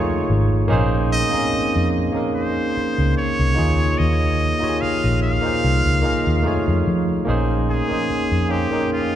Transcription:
Already playing: fingered electric bass F2, tine electric piano A3 D#4 F4 G#4 C#5, muted trumpet C#5
0.30 fingered electric bass G#1
0.68 fingered electric bass A#1, tine electric piano A#3 C#4 D#4 G#4
0.72 tine electric piano C5
1.12 muted trumpet D#5
1.31 tine electric piano A#3 C4 D#4 G#4, muted fingered electric bass stroke
1.35 tine electric piano C#4 D#5
1.53 muted fingered electric bass stroke
1.75 fingered electric bass F2
2.12 tine electric piano A#3 C#4 D#4 G#4
2.17 tine electric piano A#4
2.35 muted trumpet C5
2.77 muted fingered electric bass stroke
2.98 fingered electric bass C#2
3.17 muted trumpet C#5
3.39 fingered electric bass C2
3.55 fingered electric bass D#2, tine electric piano A#3 D#4 F4 G#4
3.59 tine electric piano C#5
3.98 fingered electric bass D#2, muted trumpet D#5
4.59 tine electric piano A#3 D#4 F4 G4, muted fingered electric bass stroke
4.64 tine electric piano C#5
4.69 tine electric piano G#4
4.81 muted trumpet F5, muted fingered electric bass stroke
5.04 fingered electric bass A#1
5.23 muted trumpet F5
5.41 tine electric piano A#3 D#4 F4 G#4
5.46 tine electric piano C5
5.64 fingered electric bass C2
5.86 fingered electric bass C#2
6.02 tine electric piano A#3 D#4 F4 G#4
6.06 tine electric piano D#5
6.27 fingered electric bass D#2
6.42 fingered electric bass F2, tine electric piano A3 D#4 F4 G#4
6.47 tine electric piano C#5
6.68 fingered electric bass F2
6.87 fingered electric bass F3
7.25 fingered electric bass A#1, tine electric piano A#3 C#4 D#4 G#4
7.30 tine electric piano C5
7.70 muted trumpet G#4
7.88 tine electric piano A#3 C#4 D#4 G#4, muted fingered electric bass stroke
7.93 tine electric piano C5
8.10 muted fingered electric bass stroke
8.31 fingered electric bass F2
8.49 tine electric piano A#3 C#4 D#4 G#4, muted trumpet G4
8.54 tine electric piano C5
8.71 tine electric piano A#3 C#4 D#4 G#4
8.76 tine electric piano A#4
8.93 muted trumpet F4

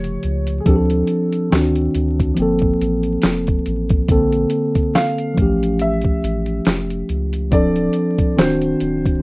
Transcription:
Already playing: sub bass F1, tine electric piano C#3 F3 A3 G4, upright piano C#5
0.04 closed hi-hat
0.23 sub bass C#2, closed hi-hat
0.47 closed hi-hat
0.60 upright piano G#4
0.65 sub bass D2, tine electric piano F3 C4 D4, upright piano A4, kick, closed hi-hat
0.69 tine electric piano G4
0.76 tine electric piano A4
0.90 closed hi-hat
1.07 closed hi-hat
1.32 closed hi-hat
1.50 sub bass D2, tine electric piano D#3 C4 D4 F#4, snare, clap, closed hi-hat
1.75 closed hi-hat
1.95 sub bass D2, closed hi-hat
2.20 kick, closed hi-hat
2.34 sub bass G1, tine electric piano F3 A#3, closed hi-hat
2.39 tine electric piano C4 A4
2.59 kick, closed hi-hat
2.81 sub bass A1, closed hi-hat
3.03 closed hi-hat
3.22 sub bass F1, snare, clap, closed hi-hat
3.47 kick, closed hi-hat
3.66 sub bass A1, closed hi-hat
3.89 kick, closed hi-hat
4.08 sub bass A#1, tine electric piano D3 A#3 C4 A4, kick, closed hi-hat
4.32 closed hi-hat
4.50 closed hi-hat
4.75 kick, closed hi-hat
4.95 upright piano F5, snare, clap, closed hi-hat
5.18 closed hi-hat
5.34 tine electric piano F3 A3, kick, closed hi-hat
5.38 sub bass A1, tine electric piano C#4 G4
5.63 closed hi-hat
5.79 upright piano E5, closed hi-hat
6.01 kick, closed hi-hat
6.24 sub bass A1, closed hi-hat
6.46 closed hi-hat
6.65 sub bass F1, snare, clap, closed hi-hat
6.90 closed hi-hat
7.09 sub bass C#2, closed hi-hat
7.33 closed hi-hat
7.51 sub bass D1, tine electric piano F3 C4 D4 A4, upright piano D5, kick, closed hi-hat
7.76 closed hi-hat
7.93 closed hi-hat
8.18 kick, closed hi-hat
8.36 sub bass D1, tine electric piano D#3 C4 D4 F#4, upright piano C5, snare, clap, closed hi-hat
8.61 closed hi-hat
8.80 sub bass D1, closed hi-hat
9.06 kick, closed hi-hat

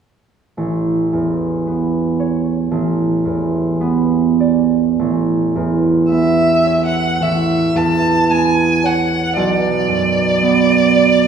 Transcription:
0.57 harp A1
1.13 harp E2
1.67 harp B3
2.20 harp C#5
2.71 harp A1
3.25 harp E2
3.81 harp B3
4.40 harp D5
4.99 harp A1
5.56 harp E2
6.11 harp B3, violin E5
6.66 harp C#5
6.86 violin F#5
7.20 harp A1, violin E5
7.75 harp E2, violin A5
8.29 harp B3, violin G#5
8.84 harp C#5, violin F#5
9.36 harp B1, violin D5
9.89 harp F#2
10.42 harp B3
10.95 harp D5

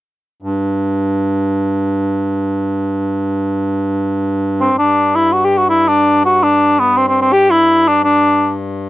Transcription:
0.42 accordion G2
4.61 cor anglais C4
4.78 accordion G2, cor anglais D4
5.15 cor anglais E4
5.32 cor anglais F#4
5.45 cor anglais G4
5.58 cor anglais F#4
5.70 cor anglais E4
5.88 cor anglais D4
6.25 cor anglais F#4
6.43 cor anglais D4
6.79 cor anglais B3
6.97 cor anglais C4
7.08 cor anglais C4
7.22 cor anglais C4
7.33 cor anglais G4
7.51 cor anglais E4
7.87 cor anglais D4
8.04 cor anglais D4

